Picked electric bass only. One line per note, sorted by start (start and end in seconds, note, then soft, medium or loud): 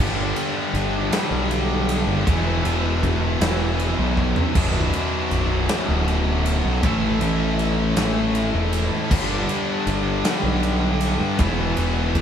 0.00 0.32 G1 loud
0.74 1.09 G1 loud
1.31 2.03 B1 medium
2.07 2.25 F#1 medium
2.27 2.61 E1 loud
2.65 3.37 E1 medium
3.40 3.94 E1 loud
3.99 4.33 B1 loud
4.55 4.90 B0 loud
5.32 5.66 B0 loud
5.89 6.60 D1 medium
6.65 6.82 B1 medium
6.83 7.18 A1 loud
7.21 7.93 A1 loud
7.97 8.50 A1 loud
8.54 8.89 E1 loud
9.11 9.46 G1 loud
9.87 10.21 G1 medium
10.44 11.16 B1 medium
11.20 11.38 G2 medium
11.39 11.74 E1 loud
11.77 12.21 E1 medium